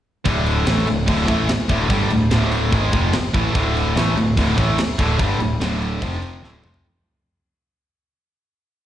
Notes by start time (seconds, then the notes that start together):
0.25 D1 D2 A2 D3, kick, crash
0.46 crash
0.66 A1 A2 E3 A3, snare, crash
0.86 D1 D2 A2, crash
1.07 D1 D2 A2 D3, kick, crash
1.28 A1 A2 E3 A3, kick, crash
1.48 muted picked electric bass stroke, muted distorted electric guitar stroke, muted overdriven electric guitar stroke, snare, crash
1.68 D1 D2 A2 D3, kick, crash
1.89 G1 G2 D3 G3, kick, crash
2.10 D1 D2 A2, crash
2.31 D1 D2 A2 D3, snare, crash
2.52 crash
2.72 G#1 G#2 D#3 G#3, kick, crash
2.93 F1 F2 C3 F3, kick, crash
3.13 muted distorted electric guitar stroke, muted overdriven electric guitar stroke, muted picked electric bass stroke, snare, crash
3.34 A1 A2 E3 A3, kick, crash
3.55 D1 D2 A2 D3, kick, crash
3.77 crash
3.96 A1 A2 E3 A3, snare, crash
4.16 D1 D2 A2, crash
4.37 D1 D2 A2 D3, kick, crash
4.57 A1 A2 E3 A3, kick, crash
4.77 muted picked electric bass stroke, muted distorted electric guitar stroke, muted overdriven electric guitar stroke, snare, crash
4.99 D1 D2 A2 D3, kick, crash
5.19 G1 G2 D3 G3, kick, crash
5.38 D1 D2 A2, crash
5.60 D1 D2 A2 D3, snare, crash
5.82 crash
6.02 F1 F2 C3 F3, kick, crash
6.22 crash
6.43 D1 D2 A2 D3, snare
6.63 F1 F2 C3 F3, mid tom
6.74 floor tom